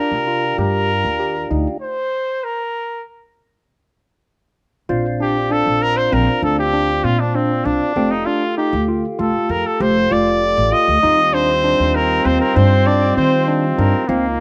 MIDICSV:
0, 0, Header, 1, 6, 480
1, 0, Start_track
1, 0, Key_signature, -2, "major"
1, 0, Tempo, 614125
1, 1416, Time_signature, 5, 2, 24, 8
1, 11256, End_track
2, 0, Start_track
2, 0, Title_t, "Trumpet"
2, 0, Program_c, 0, 56
2, 0, Note_on_c, 0, 70, 82
2, 456, Note_off_c, 0, 70, 0
2, 461, Note_on_c, 0, 70, 89
2, 1177, Note_off_c, 0, 70, 0
2, 1423, Note_on_c, 0, 72, 82
2, 1906, Note_on_c, 0, 70, 69
2, 1918, Note_off_c, 0, 72, 0
2, 2383, Note_off_c, 0, 70, 0
2, 4076, Note_on_c, 0, 67, 80
2, 4313, Note_on_c, 0, 69, 86
2, 4325, Note_off_c, 0, 67, 0
2, 4551, Note_on_c, 0, 70, 92
2, 4563, Note_off_c, 0, 69, 0
2, 4664, Note_on_c, 0, 72, 85
2, 4676, Note_off_c, 0, 70, 0
2, 4792, Note_on_c, 0, 70, 86
2, 4804, Note_off_c, 0, 72, 0
2, 5028, Note_off_c, 0, 70, 0
2, 5032, Note_on_c, 0, 69, 81
2, 5140, Note_off_c, 0, 69, 0
2, 5151, Note_on_c, 0, 67, 93
2, 5503, Note_on_c, 0, 65, 82
2, 5514, Note_off_c, 0, 67, 0
2, 5623, Note_on_c, 0, 62, 73
2, 5635, Note_off_c, 0, 65, 0
2, 5744, Note_on_c, 0, 60, 76
2, 5756, Note_off_c, 0, 62, 0
2, 5979, Note_on_c, 0, 62, 89
2, 5990, Note_off_c, 0, 60, 0
2, 6336, Note_on_c, 0, 63, 76
2, 6348, Note_off_c, 0, 62, 0
2, 6455, Note_on_c, 0, 65, 79
2, 6467, Note_off_c, 0, 63, 0
2, 6696, Note_off_c, 0, 65, 0
2, 6700, Note_on_c, 0, 67, 75
2, 6925, Note_off_c, 0, 67, 0
2, 7193, Note_on_c, 0, 69, 73
2, 7427, Note_on_c, 0, 70, 79
2, 7438, Note_off_c, 0, 69, 0
2, 7551, Note_on_c, 0, 69, 81
2, 7563, Note_off_c, 0, 70, 0
2, 7670, Note_on_c, 0, 72, 96
2, 7681, Note_off_c, 0, 69, 0
2, 7908, Note_on_c, 0, 74, 97
2, 7920, Note_off_c, 0, 72, 0
2, 8383, Note_on_c, 0, 75, 105
2, 8395, Note_off_c, 0, 74, 0
2, 8860, Note_on_c, 0, 72, 92
2, 8872, Note_off_c, 0, 75, 0
2, 9341, Note_on_c, 0, 70, 89
2, 9353, Note_off_c, 0, 72, 0
2, 9579, Note_on_c, 0, 72, 80
2, 9591, Note_off_c, 0, 70, 0
2, 9688, Note_off_c, 0, 72, 0
2, 9692, Note_on_c, 0, 70, 80
2, 9814, Note_on_c, 0, 72, 90
2, 9826, Note_off_c, 0, 70, 0
2, 10054, Note_on_c, 0, 74, 93
2, 10066, Note_off_c, 0, 72, 0
2, 10288, Note_off_c, 0, 74, 0
2, 10292, Note_on_c, 0, 72, 86
2, 10543, Note_off_c, 0, 72, 0
2, 10772, Note_on_c, 0, 70, 71
2, 10996, Note_off_c, 0, 70, 0
2, 11256, End_track
3, 0, Start_track
3, 0, Title_t, "Tonewheel organ"
3, 0, Program_c, 1, 16
3, 0, Note_on_c, 1, 62, 54
3, 0, Note_on_c, 1, 65, 44
3, 0, Note_on_c, 1, 67, 57
3, 1386, Note_off_c, 1, 62, 0
3, 1387, Note_off_c, 1, 65, 0
3, 1388, Note_off_c, 1, 67, 0
3, 3826, Note_on_c, 1, 60, 59
3, 3829, Note_on_c, 1, 62, 61
3, 3833, Note_on_c, 1, 65, 68
3, 6195, Note_off_c, 1, 60, 0
3, 6196, Note_off_c, 1, 62, 0
3, 6198, Note_off_c, 1, 65, 0
3, 6222, Note_on_c, 1, 57, 52
3, 6226, Note_on_c, 1, 67, 62
3, 6227, Note_on_c, 1, 65, 53
3, 8589, Note_off_c, 1, 57, 0
3, 8591, Note_off_c, 1, 65, 0
3, 8591, Note_off_c, 1, 67, 0
3, 8617, Note_on_c, 1, 55, 60
3, 8619, Note_on_c, 1, 63, 54
3, 8623, Note_on_c, 1, 65, 61
3, 10981, Note_off_c, 1, 55, 0
3, 10982, Note_off_c, 1, 63, 0
3, 10983, Note_off_c, 1, 65, 0
3, 11011, Note_on_c, 1, 58, 55
3, 11012, Note_on_c, 1, 63, 58
3, 11015, Note_on_c, 1, 65, 70
3, 11256, Note_off_c, 1, 58, 0
3, 11256, Note_off_c, 1, 63, 0
3, 11256, Note_off_c, 1, 65, 0
3, 11256, End_track
4, 0, Start_track
4, 0, Title_t, "Tine electric piano"
4, 0, Program_c, 2, 4
4, 0, Note_on_c, 2, 62, 69
4, 95, Note_off_c, 2, 62, 0
4, 215, Note_on_c, 2, 65, 62
4, 338, Note_off_c, 2, 65, 0
4, 456, Note_on_c, 2, 67, 80
4, 703, Note_off_c, 2, 67, 0
4, 935, Note_on_c, 2, 67, 66
4, 1058, Note_off_c, 2, 67, 0
4, 1175, Note_on_c, 2, 63, 66
4, 1299, Note_off_c, 2, 63, 0
4, 3823, Note_on_c, 2, 65, 71
4, 3947, Note_off_c, 2, 65, 0
4, 4066, Note_on_c, 2, 62, 69
4, 4189, Note_off_c, 2, 62, 0
4, 4304, Note_on_c, 2, 62, 72
4, 4551, Note_off_c, 2, 62, 0
4, 4785, Note_on_c, 2, 60, 72
4, 4908, Note_off_c, 2, 60, 0
4, 5026, Note_on_c, 2, 62, 66
4, 5149, Note_off_c, 2, 62, 0
4, 5264, Note_on_c, 2, 62, 74
4, 5388, Note_off_c, 2, 62, 0
4, 5505, Note_on_c, 2, 60, 66
4, 5628, Note_off_c, 2, 60, 0
4, 5744, Note_on_c, 2, 62, 72
4, 5868, Note_off_c, 2, 62, 0
4, 5984, Note_on_c, 2, 62, 67
4, 6108, Note_off_c, 2, 62, 0
4, 6225, Note_on_c, 2, 60, 79
4, 6348, Note_off_c, 2, 60, 0
4, 6464, Note_on_c, 2, 62, 72
4, 6587, Note_off_c, 2, 62, 0
4, 6706, Note_on_c, 2, 63, 70
4, 6829, Note_off_c, 2, 63, 0
4, 6944, Note_on_c, 2, 65, 66
4, 7067, Note_off_c, 2, 65, 0
4, 7182, Note_on_c, 2, 65, 74
4, 7429, Note_off_c, 2, 65, 0
4, 7663, Note_on_c, 2, 67, 82
4, 7786, Note_off_c, 2, 67, 0
4, 7903, Note_on_c, 2, 65, 70
4, 8149, Note_off_c, 2, 65, 0
4, 8380, Note_on_c, 2, 65, 71
4, 8503, Note_off_c, 2, 65, 0
4, 8619, Note_on_c, 2, 63, 84
4, 8743, Note_off_c, 2, 63, 0
4, 8860, Note_on_c, 2, 62, 75
4, 8983, Note_off_c, 2, 62, 0
4, 9099, Note_on_c, 2, 62, 72
4, 9345, Note_off_c, 2, 62, 0
4, 9580, Note_on_c, 2, 60, 76
4, 9703, Note_off_c, 2, 60, 0
4, 9815, Note_on_c, 2, 62, 64
4, 9939, Note_off_c, 2, 62, 0
4, 10058, Note_on_c, 2, 62, 85
4, 10181, Note_off_c, 2, 62, 0
4, 10294, Note_on_c, 2, 60, 69
4, 10417, Note_off_c, 2, 60, 0
4, 10533, Note_on_c, 2, 62, 80
4, 10657, Note_off_c, 2, 62, 0
4, 10773, Note_on_c, 2, 62, 66
4, 10896, Note_off_c, 2, 62, 0
4, 11013, Note_on_c, 2, 60, 87
4, 11136, Note_off_c, 2, 60, 0
4, 11256, End_track
5, 0, Start_track
5, 0, Title_t, "Flugelhorn"
5, 0, Program_c, 3, 56
5, 8617, Note_on_c, 3, 60, 107
5, 11006, Note_on_c, 3, 58, 108
5, 11018, Note_off_c, 3, 60, 0
5, 11256, Note_off_c, 3, 58, 0
5, 11256, End_track
6, 0, Start_track
6, 0, Title_t, "Upright bass"
6, 0, Program_c, 4, 32
6, 90, Note_on_c, 4, 48, 69
6, 421, Note_off_c, 4, 48, 0
6, 454, Note_on_c, 4, 43, 79
6, 783, Note_off_c, 4, 43, 0
6, 817, Note_on_c, 4, 39, 72
6, 1145, Note_off_c, 4, 39, 0
6, 1178, Note_on_c, 4, 38, 72
6, 1287, Note_off_c, 4, 38, 0
6, 3823, Note_on_c, 4, 34, 82
6, 4393, Note_off_c, 4, 34, 0
6, 4427, Note_on_c, 4, 34, 68
6, 4754, Note_off_c, 4, 34, 0
6, 4788, Note_on_c, 4, 34, 84
6, 4895, Note_off_c, 4, 34, 0
6, 5021, Note_on_c, 4, 38, 85
6, 5472, Note_off_c, 4, 38, 0
6, 5504, Note_on_c, 4, 46, 76
6, 5953, Note_off_c, 4, 46, 0
6, 5981, Note_on_c, 4, 36, 83
6, 6092, Note_off_c, 4, 36, 0
6, 6221, Note_on_c, 4, 29, 78
6, 6441, Note_off_c, 4, 29, 0
6, 6823, Note_on_c, 4, 38, 83
6, 7042, Note_off_c, 4, 38, 0
6, 7184, Note_on_c, 4, 29, 83
6, 7293, Note_off_c, 4, 29, 0
6, 7420, Note_on_c, 4, 41, 82
6, 7531, Note_off_c, 4, 41, 0
6, 7662, Note_on_c, 4, 29, 90
6, 7881, Note_off_c, 4, 29, 0
6, 7904, Note_on_c, 4, 29, 77
6, 8231, Note_off_c, 4, 29, 0
6, 8263, Note_on_c, 4, 33, 87
6, 8372, Note_off_c, 4, 33, 0
6, 8503, Note_on_c, 4, 38, 77
6, 8612, Note_off_c, 4, 38, 0
6, 8625, Note_on_c, 4, 39, 87
6, 9190, Note_off_c, 4, 39, 0
6, 9220, Note_on_c, 4, 39, 75
6, 9547, Note_off_c, 4, 39, 0
6, 9577, Note_on_c, 4, 39, 88
6, 9687, Note_off_c, 4, 39, 0
6, 9819, Note_on_c, 4, 43, 97
6, 10266, Note_off_c, 4, 43, 0
6, 10297, Note_on_c, 4, 51, 78
6, 10744, Note_off_c, 4, 51, 0
6, 10774, Note_on_c, 4, 43, 93
6, 10883, Note_off_c, 4, 43, 0
6, 11011, Note_on_c, 4, 37, 90
6, 11230, Note_off_c, 4, 37, 0
6, 11256, End_track
0, 0, End_of_file